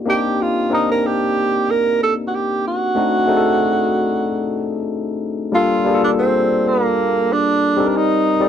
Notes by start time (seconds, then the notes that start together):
0.05 A#3 C4 D4 D#4 G4
0.10 G4
0.42 F4
0.70 A#3 C4 D4 D#4 A#4
0.74 D#4
0.92 A#4
1.07 G4
1.71 A#4
2.03 A4
2.27 F#4
2.35 G4
2.68 F#4
2.95 A3 C4 D4 D#4 F#4
3.27 A3 C4 D4 D#4 G#4
3.36 A4
5.52 G3 A#3 D4 F4 A4
5.84 G3 A#3 D4 F4 G#4
5.94 A4
6.04 D4
6.19 C4
6.68 A#3
7.33 D4
7.76 G3 C4 D#4 A4 D5
7.86 D4 A#4
7.96 D#4
8.40 G3 C4 D#4 A4 D5